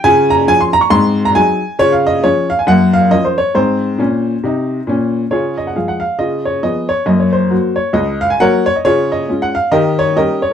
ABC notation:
X:1
M:4/4
L:1/16
Q:"Swing" 1/4=136
K:Db
V:1 name="Upright piano"
a2 b2 a c' b d' c'3 b a4 | d f e2 d2 f a g2 f2 e c d2 | c12 z4 | [FAd]2 e g f g f2 e2 d2 e2 d2 |
e d c4 d2 e2 f a [Bdg]2 d z | [FAd]2 e3 g f2 [=GBe]2 d2 [GBe]2 d z |]
V:2 name="Upright piano"
[D,F]4 [F,DA]4 [A,,C]4 [G,EA]4 | [D,F]4 [F,DA]4 [G,,B,]4 [F,DB]4 | [A,,C]4 [B,,D]4 [C,E]4 [B,,D]4 | D,4 [F,A,A]4 [D,F]4 [F,_CA]4 |
[G,,B,]4 [G,B,G]4 D,,4 [G,B,G]4 | D,4 [A,DF]4 E,4 [=G,DE]4 |]